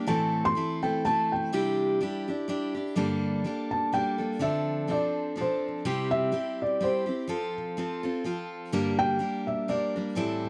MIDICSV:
0, 0, Header, 1, 3, 480
1, 0, Start_track
1, 0, Tempo, 480000
1, 87, Time_signature, 3, 2, 24, 8
1, 10493, End_track
2, 0, Start_track
2, 0, Title_t, "Felt piano"
2, 0, Program_c, 0, 0
2, 76, Note_on_c, 0, 81, 80
2, 451, Note_on_c, 0, 84, 108
2, 466, Note_off_c, 0, 81, 0
2, 802, Note_off_c, 0, 84, 0
2, 828, Note_on_c, 0, 79, 74
2, 1051, Note_on_c, 0, 81, 91
2, 1052, Note_off_c, 0, 79, 0
2, 1323, Note_off_c, 0, 81, 0
2, 1323, Note_on_c, 0, 79, 69
2, 2453, Note_off_c, 0, 79, 0
2, 3711, Note_on_c, 0, 81, 76
2, 3912, Note_off_c, 0, 81, 0
2, 3937, Note_on_c, 0, 79, 87
2, 4420, Note_on_c, 0, 76, 79
2, 4427, Note_off_c, 0, 79, 0
2, 4909, Note_off_c, 0, 76, 0
2, 4912, Note_on_c, 0, 74, 76
2, 5347, Note_off_c, 0, 74, 0
2, 5408, Note_on_c, 0, 72, 73
2, 5636, Note_off_c, 0, 72, 0
2, 6111, Note_on_c, 0, 76, 102
2, 6606, Note_off_c, 0, 76, 0
2, 6621, Note_on_c, 0, 74, 71
2, 6828, Note_off_c, 0, 74, 0
2, 6832, Note_on_c, 0, 72, 73
2, 7525, Note_off_c, 0, 72, 0
2, 8987, Note_on_c, 0, 79, 108
2, 9436, Note_off_c, 0, 79, 0
2, 9471, Note_on_c, 0, 76, 72
2, 9691, Note_on_c, 0, 74, 70
2, 9693, Note_off_c, 0, 76, 0
2, 10395, Note_off_c, 0, 74, 0
2, 10493, End_track
3, 0, Start_track
3, 0, Title_t, "Steel-string acoustic guitar"
3, 0, Program_c, 1, 25
3, 66, Note_on_c, 1, 45, 73
3, 72, Note_on_c, 1, 52, 82
3, 75, Note_on_c, 1, 57, 77
3, 77, Note_on_c, 1, 60, 79
3, 86, Note_on_c, 1, 64, 73
3, 92, Note_on_c, 1, 69, 79
3, 539, Note_off_c, 1, 57, 0
3, 551, Note_on_c, 1, 57, 52
3, 557, Note_off_c, 1, 45, 0
3, 559, Note_off_c, 1, 60, 0
3, 561, Note_off_c, 1, 69, 0
3, 563, Note_on_c, 1, 60, 55
3, 566, Note_off_c, 1, 64, 0
3, 570, Note_on_c, 1, 64, 59
3, 573, Note_on_c, 1, 69, 63
3, 812, Note_off_c, 1, 69, 0
3, 824, Note_off_c, 1, 64, 0
3, 824, Note_on_c, 1, 69, 52
3, 825, Note_off_c, 1, 57, 0
3, 826, Note_off_c, 1, 60, 0
3, 836, Note_on_c, 1, 64, 49
3, 838, Note_on_c, 1, 60, 43
3, 845, Note_on_c, 1, 57, 39
3, 1034, Note_off_c, 1, 57, 0
3, 1039, Note_off_c, 1, 60, 0
3, 1044, Note_off_c, 1, 69, 0
3, 1046, Note_on_c, 1, 57, 58
3, 1049, Note_off_c, 1, 64, 0
3, 1051, Note_on_c, 1, 60, 55
3, 1063, Note_on_c, 1, 64, 58
3, 1067, Note_on_c, 1, 69, 61
3, 1521, Note_off_c, 1, 52, 0
3, 1522, Note_off_c, 1, 64, 0
3, 1525, Note_on_c, 1, 48, 74
3, 1527, Note_off_c, 1, 57, 0
3, 1530, Note_off_c, 1, 60, 0
3, 1531, Note_on_c, 1, 55, 81
3, 1534, Note_on_c, 1, 62, 75
3, 1534, Note_on_c, 1, 64, 76
3, 1535, Note_off_c, 1, 69, 0
3, 1539, Note_on_c, 1, 67, 87
3, 1993, Note_off_c, 1, 55, 0
3, 2001, Note_off_c, 1, 62, 0
3, 2005, Note_on_c, 1, 55, 64
3, 2007, Note_off_c, 1, 48, 0
3, 2012, Note_off_c, 1, 64, 0
3, 2013, Note_on_c, 1, 62, 63
3, 2014, Note_off_c, 1, 67, 0
3, 2026, Note_on_c, 1, 64, 71
3, 2026, Note_on_c, 1, 67, 67
3, 2265, Note_off_c, 1, 67, 0
3, 2272, Note_off_c, 1, 55, 0
3, 2272, Note_off_c, 1, 64, 0
3, 2276, Note_off_c, 1, 62, 0
3, 2277, Note_on_c, 1, 67, 51
3, 2284, Note_on_c, 1, 64, 46
3, 2296, Note_on_c, 1, 62, 44
3, 2476, Note_off_c, 1, 62, 0
3, 2478, Note_on_c, 1, 55, 61
3, 2481, Note_off_c, 1, 64, 0
3, 2484, Note_off_c, 1, 67, 0
3, 2488, Note_on_c, 1, 62, 69
3, 2493, Note_on_c, 1, 64, 73
3, 2496, Note_on_c, 1, 67, 65
3, 2734, Note_off_c, 1, 67, 0
3, 2746, Note_on_c, 1, 67, 46
3, 2747, Note_off_c, 1, 64, 0
3, 2748, Note_off_c, 1, 55, 0
3, 2753, Note_off_c, 1, 62, 0
3, 2760, Note_on_c, 1, 64, 44
3, 2768, Note_on_c, 1, 62, 39
3, 2955, Note_on_c, 1, 43, 70
3, 2960, Note_on_c, 1, 55, 81
3, 2962, Note_on_c, 1, 50, 82
3, 2963, Note_off_c, 1, 62, 0
3, 2963, Note_off_c, 1, 67, 0
3, 2967, Note_on_c, 1, 69, 91
3, 2971, Note_off_c, 1, 64, 0
3, 2972, Note_on_c, 1, 58, 81
3, 2975, Note_on_c, 1, 62, 84
3, 3431, Note_off_c, 1, 55, 0
3, 3437, Note_off_c, 1, 58, 0
3, 3442, Note_off_c, 1, 43, 0
3, 3443, Note_on_c, 1, 55, 60
3, 3445, Note_off_c, 1, 50, 0
3, 3449, Note_on_c, 1, 58, 52
3, 3451, Note_off_c, 1, 62, 0
3, 3455, Note_on_c, 1, 62, 61
3, 3465, Note_off_c, 1, 69, 0
3, 3469, Note_on_c, 1, 69, 65
3, 3913, Note_off_c, 1, 55, 0
3, 3922, Note_off_c, 1, 58, 0
3, 3925, Note_on_c, 1, 55, 60
3, 3932, Note_off_c, 1, 62, 0
3, 3934, Note_off_c, 1, 69, 0
3, 3934, Note_on_c, 1, 58, 62
3, 3942, Note_on_c, 1, 62, 58
3, 3946, Note_on_c, 1, 69, 58
3, 4169, Note_off_c, 1, 69, 0
3, 4180, Note_off_c, 1, 62, 0
3, 4181, Note_on_c, 1, 69, 40
3, 4192, Note_off_c, 1, 55, 0
3, 4192, Note_off_c, 1, 58, 0
3, 4192, Note_on_c, 1, 62, 42
3, 4204, Note_on_c, 1, 58, 36
3, 4206, Note_on_c, 1, 55, 35
3, 4393, Note_on_c, 1, 50, 68
3, 4394, Note_off_c, 1, 62, 0
3, 4398, Note_off_c, 1, 58, 0
3, 4402, Note_off_c, 1, 55, 0
3, 4402, Note_off_c, 1, 69, 0
3, 4402, Note_on_c, 1, 60, 68
3, 4406, Note_on_c, 1, 53, 83
3, 4406, Note_on_c, 1, 62, 73
3, 4414, Note_on_c, 1, 69, 74
3, 4863, Note_off_c, 1, 53, 0
3, 4875, Note_on_c, 1, 53, 50
3, 4878, Note_off_c, 1, 60, 0
3, 4880, Note_off_c, 1, 62, 0
3, 4881, Note_off_c, 1, 50, 0
3, 4882, Note_on_c, 1, 60, 58
3, 4888, Note_off_c, 1, 69, 0
3, 4892, Note_on_c, 1, 62, 53
3, 4900, Note_on_c, 1, 69, 56
3, 5344, Note_off_c, 1, 53, 0
3, 5356, Note_on_c, 1, 53, 58
3, 5361, Note_off_c, 1, 62, 0
3, 5365, Note_off_c, 1, 60, 0
3, 5365, Note_off_c, 1, 69, 0
3, 5369, Note_on_c, 1, 60, 64
3, 5373, Note_on_c, 1, 62, 66
3, 5377, Note_on_c, 1, 69, 63
3, 5842, Note_off_c, 1, 53, 0
3, 5848, Note_off_c, 1, 60, 0
3, 5850, Note_off_c, 1, 62, 0
3, 5850, Note_on_c, 1, 48, 87
3, 5852, Note_on_c, 1, 55, 94
3, 5852, Note_on_c, 1, 60, 99
3, 5853, Note_off_c, 1, 69, 0
3, 5858, Note_on_c, 1, 64, 84
3, 5865, Note_on_c, 1, 67, 85
3, 6306, Note_off_c, 1, 55, 0
3, 6318, Note_on_c, 1, 55, 52
3, 6321, Note_off_c, 1, 60, 0
3, 6322, Note_off_c, 1, 64, 0
3, 6325, Note_off_c, 1, 67, 0
3, 6325, Note_on_c, 1, 60, 61
3, 6329, Note_off_c, 1, 48, 0
3, 6334, Note_on_c, 1, 64, 56
3, 6337, Note_on_c, 1, 67, 62
3, 6792, Note_off_c, 1, 55, 0
3, 6794, Note_off_c, 1, 60, 0
3, 6804, Note_off_c, 1, 64, 0
3, 6804, Note_on_c, 1, 55, 55
3, 6806, Note_on_c, 1, 60, 58
3, 6812, Note_off_c, 1, 67, 0
3, 6816, Note_on_c, 1, 64, 59
3, 6825, Note_on_c, 1, 67, 61
3, 7047, Note_off_c, 1, 67, 0
3, 7059, Note_on_c, 1, 67, 46
3, 7061, Note_off_c, 1, 64, 0
3, 7071, Note_off_c, 1, 55, 0
3, 7072, Note_off_c, 1, 60, 0
3, 7073, Note_on_c, 1, 64, 40
3, 7087, Note_on_c, 1, 60, 33
3, 7274, Note_off_c, 1, 60, 0
3, 7275, Note_on_c, 1, 53, 72
3, 7281, Note_off_c, 1, 67, 0
3, 7284, Note_off_c, 1, 64, 0
3, 7286, Note_on_c, 1, 60, 75
3, 7288, Note_on_c, 1, 65, 84
3, 7294, Note_on_c, 1, 69, 78
3, 7757, Note_off_c, 1, 53, 0
3, 7767, Note_off_c, 1, 60, 0
3, 7768, Note_off_c, 1, 65, 0
3, 7770, Note_off_c, 1, 69, 0
3, 7770, Note_on_c, 1, 53, 58
3, 7777, Note_on_c, 1, 60, 69
3, 7787, Note_on_c, 1, 65, 64
3, 7790, Note_on_c, 1, 69, 65
3, 8020, Note_off_c, 1, 69, 0
3, 8028, Note_off_c, 1, 65, 0
3, 8031, Note_on_c, 1, 69, 58
3, 8034, Note_off_c, 1, 53, 0
3, 8038, Note_off_c, 1, 60, 0
3, 8040, Note_on_c, 1, 65, 44
3, 8050, Note_on_c, 1, 60, 50
3, 8240, Note_off_c, 1, 60, 0
3, 8243, Note_on_c, 1, 53, 54
3, 8247, Note_off_c, 1, 69, 0
3, 8248, Note_off_c, 1, 65, 0
3, 8252, Note_on_c, 1, 60, 67
3, 8260, Note_on_c, 1, 65, 66
3, 8268, Note_on_c, 1, 69, 66
3, 8724, Note_on_c, 1, 50, 77
3, 8725, Note_off_c, 1, 53, 0
3, 8727, Note_off_c, 1, 60, 0
3, 8727, Note_on_c, 1, 43, 85
3, 8730, Note_off_c, 1, 65, 0
3, 8731, Note_on_c, 1, 55, 90
3, 8731, Note_on_c, 1, 58, 85
3, 8734, Note_on_c, 1, 62, 87
3, 8736, Note_off_c, 1, 69, 0
3, 8740, Note_on_c, 1, 70, 82
3, 9187, Note_off_c, 1, 55, 0
3, 9187, Note_off_c, 1, 58, 0
3, 9191, Note_on_c, 1, 55, 52
3, 9193, Note_off_c, 1, 62, 0
3, 9199, Note_on_c, 1, 58, 54
3, 9204, Note_off_c, 1, 70, 0
3, 9205, Note_on_c, 1, 62, 58
3, 9206, Note_off_c, 1, 50, 0
3, 9207, Note_off_c, 1, 43, 0
3, 9216, Note_on_c, 1, 70, 59
3, 9669, Note_off_c, 1, 55, 0
3, 9677, Note_off_c, 1, 58, 0
3, 9681, Note_on_c, 1, 55, 58
3, 9683, Note_off_c, 1, 62, 0
3, 9687, Note_off_c, 1, 70, 0
3, 9689, Note_on_c, 1, 58, 61
3, 9695, Note_on_c, 1, 62, 65
3, 9699, Note_on_c, 1, 70, 69
3, 9944, Note_off_c, 1, 70, 0
3, 9946, Note_off_c, 1, 62, 0
3, 9950, Note_off_c, 1, 55, 0
3, 9954, Note_off_c, 1, 58, 0
3, 9956, Note_on_c, 1, 70, 42
3, 9958, Note_on_c, 1, 62, 41
3, 9970, Note_on_c, 1, 55, 38
3, 9970, Note_on_c, 1, 58, 35
3, 10151, Note_off_c, 1, 55, 0
3, 10152, Note_on_c, 1, 45, 66
3, 10159, Note_on_c, 1, 52, 72
3, 10163, Note_off_c, 1, 58, 0
3, 10163, Note_on_c, 1, 55, 76
3, 10167, Note_on_c, 1, 60, 82
3, 10169, Note_off_c, 1, 62, 0
3, 10169, Note_off_c, 1, 70, 0
3, 10173, Note_on_c, 1, 64, 80
3, 10173, Note_on_c, 1, 69, 78
3, 10493, Note_off_c, 1, 45, 0
3, 10493, Note_off_c, 1, 52, 0
3, 10493, Note_off_c, 1, 55, 0
3, 10493, Note_off_c, 1, 60, 0
3, 10493, Note_off_c, 1, 64, 0
3, 10493, Note_off_c, 1, 69, 0
3, 10493, End_track
0, 0, End_of_file